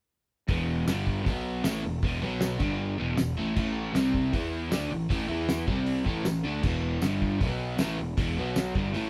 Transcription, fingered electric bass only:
0.49 0.85 E1 medium
0.88 1.23 G1 medium
1.26 1.62 B1 loud
1.65 1.83 A1 medium
1.84 2.02 E1 medium
2.03 2.21 E1 medium
2.22 2.58 B1 loud
2.60 2.96 G1 medium
3.00 3.17 E1 medium
3.18 3.36 E1 medium
3.38 3.56 A1 medium
3.57 3.92 A1 loud
3.95 4.31 C2 loud
4.33 4.69 E2 loud
4.72 4.90 D2 medium
4.92 5.10 A1 medium
5.10 5.28 A1 loud
5.29 5.65 E2 loud
5.68 6.04 C2 loud
6.07 6.24 A1 medium
6.25 6.43 A1 medium
6.44 6.62 D2 medium
6.64 7.00 E1 medium
7.02 7.38 G1 medium
7.41 7.77 B1 loud
7.79 7.97 A1 medium
7.99 8.17 E1 medium
8.18 8.36 E1 medium
8.38 8.73 B1 loud
8.75 8.93 G1 loud
8.95 9.10 A1 loud

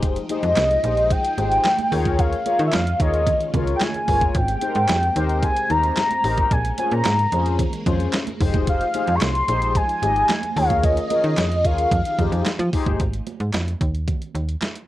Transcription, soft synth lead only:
0.31 1.13 D#5 loud
1.11 2.21 G5 loud
2.19 2.66 F5 loud
2.67 2.75 E5 medium
2.74 3.02 F5 medium
3.01 3.54 D#5 medium
3.75 3.84 G5 medium
3.82 4.38 G#5 medium
4.36 5.44 G5 loud
5.44 5.72 G#5 loud
5.71 5.97 A#5 loud
5.98 6.54 A#5 loud
6.53 6.79 G#5 loud
6.79 6.94 G#5 medium
6.93 7.73 A#5 medium
8.69 9.17 F5 loud
9.15 9.24 C#6 medium
9.23 9.78 C6 loud
9.77 10.59 G#5 loud
10.57 10.84 F5 loud
10.84 11.67 D#5 medium
11.66 12.73 F5 loud

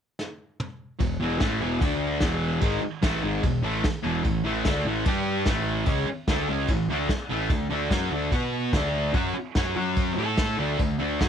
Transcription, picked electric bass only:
1.01 1.19 E1 medium
1.19 1.38 E1 loud
1.41 1.59 A1 medium
1.61 1.79 E1 medium
1.81 2.19 D2 loud
2.22 2.59 E1 medium
2.62 2.80 G#1 medium
2.80 muted picked electric bass stroke soft
3.03 3.22 A1 medium
3.23 3.42 G#1 loud
3.43 3.62 E1 medium
3.63 3.82 A1 medium
3.85 muted picked electric bass stroke soft
4.05 4.23 E1 loud
4.24 4.43 A1 medium
4.44 4.63 A1 loud
4.66 4.84 D2 medium
4.85 5.04 A1 loud
5.06 5.44 G2 medium
5.46 5.84 A1 medium
5.87 6.06 C#2 medium
6.07 muted picked electric bass stroke soft
6.28 6.47 D2 medium
6.48 6.67 C#2 loud
6.69 6.87 A1 medium
6.88 7.08 D2 medium
7.09 muted picked electric bass stroke soft
7.31 7.48 A1 loud
7.49 7.69 D2 medium
7.71 7.90 D2 loud
7.90 8.10 F#2 medium
8.11 8.31 D2 medium
8.32 8.70 B2 loud
8.73 9.12 D2 medium
9.15 9.34 F#2 loud
9.35 muted picked electric bass stroke soft
9.56 9.75 F#2 loud
9.77 10.15 F#2 loud
10.18 10.56 A2 loud
10.59 10.78 D2 loud
10.80 10.99 D2 medium
11.02 11.20 D2 loud
11.21 11.29 F#2 medium

